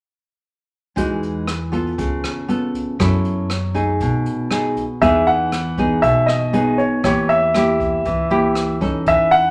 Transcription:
0.96 upright bass E2, nylon-string guitar E3 G#3 D#4 F#4, kick, closed hi-hat
1.23 closed hi-hat
1.48 cross-stick, closed hi-hat
1.72 nylon-string guitar B3 F4 A4, kick, closed hi-hat
1.98 upright bass C#2, nylon-string guitar C#3, kick, closed hi-hat
2.24 cross-stick, closed hi-hat
2.48 nylon-string guitar B3 F4 A4, closed hi-hat
2.74 kick, closed hi-hat
2.99 upright bass F#2, nylon-string guitar F#3 C#4 E4 A4, kick, cross-stick, closed hi-hat
3.25 closed hi-hat
3.50 cross-stick, closed hi-hat
3.74 nylon-string guitar A3 D#4 G#4, kick, closed hi-hat
4.00 upright bass B1, nylon-string guitar B2, kick, closed hi-hat
4.26 closed hi-hat
4.51 nylon-string guitar A3 D#4 G#4, cross-stick, closed hi-hat
4.76 kick, closed hi-hat
5.01 upright bass E2, nylon-string guitar E3 B3 D#4 G#4, grand piano E5, kick, closed hi-hat
5.27 grand piano F#5, closed hi-hat
5.52 cross-stick, closed hi-hat
5.78 nylon-string guitar B3 D#4 G#4, kick, closed hi-hat
6.02 upright bass B1, nylon-string guitar B2, grand piano E5, kick, closed hi-hat
6.26 grand piano D#5, cross-stick, closed hi-hat
6.53 nylon-string guitar B3 D#4 G#4, closed hi-hat
6.78 grand piano C#5, closed hi-hat
7.03 upright bass E2, nylon-string guitar E3 A#3 E4 G4, grand piano C#5, kick, cross-stick, closed hi-hat
7.29 grand piano E5, closed hi-hat
7.54 nylon-string guitar A#3 E4 G4, cross-stick, closed hi-hat
7.80 kick, closed hi-hat
8.05 upright bass C#2, nylon-string guitar E3, kick, closed hi-hat
8.30 nylon-string guitar A#3 E4 G4, closed hi-hat
8.55 cross-stick, closed hi-hat
8.81 nylon-string guitar C#4 D#4 A4, kick, closed hi-hat
9.06 upright bass E2, nylon-string guitar E3, grand piano E5, kick, closed hi-hat
9.31 grand piano F#5, closed hi-hat

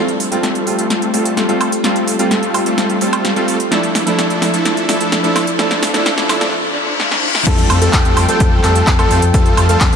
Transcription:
Already playing: supersaw synth G3 A3 C4 F4 A4, analog synth pad G3 A3 F4, riser
0.08 closed hi-hat
0.20 open hi-hat
0.31 grand piano G3 A3 C4 F4, supersaw synth G3 A3 C4 F4 A4, closed hi-hat
0.43 snare, closed hi-hat
0.55 closed hi-hat
0.66 grand piano G3 A3 C4 F4, open hi-hat
0.79 supersaw synth G3 A3 C4 F4 A4, closed hi-hat
0.90 snare, closed hi-hat
1.02 closed hi-hat
1.13 grand piano G3 A3 C4 F4, supersaw synth G3 A3 C4 F4 A4, open hi-hat
1.25 closed hi-hat
1.37 snare, closed hi-hat
1.48 grand piano G3 A3 C4 F4, supersaw synth G3 A3 C4 F4 A4, closed hi-hat
1.61 open hi-hat, high woodblock
1.72 closed hi-hat
1.83 grand piano G3 A3 C4 F4, supersaw synth G3 A3 C4 F4 A4, snare, closed hi-hat
1.96 closed hi-hat
2.08 open hi-hat
2.19 grand piano G3 A3 C4 F4, supersaw synth G3 A3 C4 F4 A4, closed hi-hat
2.31 snare, closed hi-hat
2.43 closed hi-hat
2.54 grand piano G3 A3 C4 F4, open hi-hat, high woodblock
2.66 supersaw synth G3 A3 C4 F4 A4, closed hi-hat
2.78 snare, closed hi-hat
2.90 closed hi-hat
3.01 grand piano G3 A3 C4 F4, supersaw synth G3 A3 C4 F4 A4, open hi-hat
3.13 closed hi-hat, high woodblock
3.25 snare, closed hi-hat
3.36 grand piano G3 A3 C4 F4, supersaw synth G3 A3 C4 F4 A4, closed hi-hat
3.48 open hi-hat
3.60 closed hi-hat
3.71 grand piano F3 A3 D4 E4, supersaw synth F3 A3 D4 E4 A4, analog synth pad F3 D4 E4, snare, closed hi-hat
3.83 closed hi-hat
3.95 snare, open hi-hat
4.06 grand piano F3 A3 D4 E4, supersaw synth F3 A3 D4 E4 A4, closed hi-hat
4.19 snare, closed hi-hat
4.30 closed hi-hat
4.41 grand piano F3 A3 D4 E4, snare, open hi-hat
4.54 supersaw synth F3 A3 D4 E4 A4, closed hi-hat
4.65 snare, closed hi-hat
4.77 closed hi-hat
4.88 grand piano F3 A3 D4 E4, supersaw synth F3 A3 D4 E4 A4, snare, open hi-hat
5.01 closed hi-hat
5.12 snare, closed hi-hat
5.23 grand piano F3 A3 D4 E4, supersaw synth F3 A3 D4 E4 A4, closed hi-hat
5.36 snare, open hi-hat, high woodblock
5.47 closed hi-hat
5.58 grand piano F3 A3 D4 E4, supersaw synth F3 A3 D4 E4 A4, snare, closed hi-hat
5.71 snare, closed hi-hat
5.83 snare, open hi-hat
5.94 grand piano F3 A3 D4 E4, supersaw synth F3 A3 D4 E4 A4, snare, closed hi-hat
6.06 snare, closed hi-hat
6.18 snare, closed hi-hat
6.29 grand piano F3 A3 D4 E4, snare, open hi-hat, high woodblock
6.41 supersaw synth F3 A3 D4 E4 A4, snare, closed hi-hat
6.53 reverse cymbal
7.00 snare
7.11 snare
7.35 snare
7.47 sub bass F2, analog synth pad F3 A4 G5, supersaw synth G3 A3 C4 F4 A4, grand piano A4, kick, closed hi-hat, crash
7.58 closed hi-hat
7.70 sub bass F2, open hi-hat, high woodblock
7.82 supersaw synth G3 A3 C4 F4 A4, grand piano A4, closed hi-hat
7.93 sub bass F2, kick, clap, closed hi-hat
8.05 sub bass F2, closed hi-hat
8.17 sub bass F2, open hi-hat, high woodblock
8.29 supersaw synth G3 A3 C4 F4 A4, grand piano A4, closed hi-hat
8.40 sub bass F2, kick, closed hi-hat
8.64 sub bass F2, supersaw synth G3 A3 C4 F4 A4, grand piano A4, clap, open hi-hat
8.76 closed hi-hat
8.87 sub bass F2, kick, clap, closed hi-hat
8.99 supersaw synth G3 A3 C4 F4 A4, grand piano A4, closed hi-hat, high woodblock
9.11 sub bass F2, open hi-hat
9.22 sub bass F2, closed hi-hat
9.34 sub bass F2, supersaw synth G3 A3 C4 F4 A4, grand piano A4, analog synth pad F5, kick, closed hi-hat
9.46 closed hi-hat
9.57 sub bass F2, open hi-hat, high woodblock
9.69 supersaw synth G3 A3 C4 F4 A4, grand piano A4, closed hi-hat
9.81 sub bass F2, kick, clap, closed hi-hat
9.93 sub bass F2, closed hi-hat

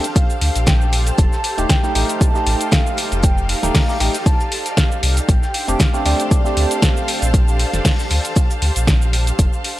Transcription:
Already playing: string machine D4 G4 A4 C5 F5, string section G4 C5 F5 A5, soft synth lead A5
0.04 closed hi-hat, cabasa
0.16 soft synth lead F5, kick, closed hi-hat, cabasa, shaker
0.30 closed hi-hat, cabasa
0.41 sub bass D2, open hi-hat, shaker
0.55 sub bass A#1, closed hi-hat, cabasa
0.67 soft synth lead G5, kick, snare, closed hi-hat, cabasa, shaker
0.81 cabasa
0.93 open hi-hat, shaker
1.06 closed hi-hat, cabasa
1.18 sub bass F1, string machine D#4 C5 F5, string section G4, soft synth lead A5, kick, closed hi-hat, cabasa, shaker
1.32 snare, cabasa
1.44 open hi-hat, shaker
1.58 sub bass D#1, synth stab A3 D#4 G4, closed hi-hat, cabasa
1.69 soft synth lead G5, kick, snare, closed hi-hat, cabasa, shaker
1.83 synth stab A3 D#4 G4, snare, cabasa
1.95 sub bass A1, synth stab A3 D#4 G4, open hi-hat, shaker
2.09 closed hi-hat, cabasa
2.21 soft synth lead A5, kick, closed hi-hat, cabasa, shaker
2.34 synth stab A3 D#4 G4, snare, cabasa
2.46 sub bass A1, open hi-hat, shaker
2.61 closed hi-hat, cabasa
2.72 soft synth lead F5, kick, snare, closed hi-hat, cabasa, shaker
2.87 cabasa
2.98 open hi-hat, shaker
3.12 sub bass F1, closed hi-hat, cabasa
3.23 string machine D5, soft synth lead G5, kick, closed hi-hat, cabasa, shaker
3.38 cabasa
3.49 soft synth lead F5, open hi-hat, shaker
3.63 sub bass D#1, synth stab A3 D#4 G4, snare, closed hi-hat, cabasa
3.75 soft synth lead F5, kick, snare, closed hi-hat, open hi-hat, cabasa
3.88 synth stab A3 D#4 G4, snare, cabasa
4.00 sub bass A1, synth stab A3 D#4 G4, soft synth lead G5, snare, open hi-hat, shaker
4.14 closed hi-hat, cabasa
4.26 soft synth lead A5, kick, closed hi-hat, cabasa, shaker
4.40 closed hi-hat, cabasa
4.52 open hi-hat, shaker
4.66 closed hi-hat, cabasa
4.77 soft synth lead F5, kick, snare, closed hi-hat, cabasa, shaker
4.92 cabasa
5.03 sub bass C2, open hi-hat, shaker
5.17 closed hi-hat, cabasa
5.29 sub bass A#1, string machine D4 A4 C5 F5, soft synth lead G5, kick, closed hi-hat, cabasa, shaker
5.42 snare, cabasa
5.49 string section C5 F5
5.54 open hi-hat, shaker
5.68 sub bass F1, synth stab A3 C4 D4 G4, closed hi-hat, cabasa
5.80 soft synth lead F5, string section A5, kick, snare, closed hi-hat, cabasa, shaker
5.93 synth stab A3 C4 D4 G4, snare, cabasa
6.05 sub bass D2, synth stab A3 C4 D4 G4, soft synth lead D5, open hi-hat, shaker
6.20 closed hi-hat, cabasa
6.31 kick, closed hi-hat, cabasa, shaker
6.44 synth stab A3 C4 D4 G4, snare, cabasa
6.57 sub bass D2, open hi-hat, shaker
6.71 closed hi-hat, cabasa
6.82 soft synth lead F5, kick, snare, closed hi-hat, cabasa, shaker
6.97 cabasa
7.08 open hi-hat, shaker
7.22 sub bass A#1, closed hi-hat, cabasa
7.34 kick, closed hi-hat, cabasa, shaker
7.48 cabasa
7.59 open hi-hat, shaker
7.73 sub bass F1, snare, closed hi-hat, cabasa
7.85 kick, snare, closed hi-hat, open hi-hat, cabasa
7.99 snare, cabasa
8.10 sub bass D2, snare, open hi-hat, shaker
8.25 closed hi-hat, cabasa
8.36 kick, closed hi-hat, cabasa, shaker
8.50 closed hi-hat, cabasa
8.62 sub bass D2, open hi-hat, shaker
8.76 sub bass A#1, closed hi-hat, cabasa
8.87 kick, snare, closed hi-hat, cabasa, shaker
9.02 cabasa
9.13 open hi-hat, shaker
9.27 closed hi-hat, cabasa
9.39 sub bass F1, kick, closed hi-hat, cabasa
9.53 cabasa
9.64 open hi-hat

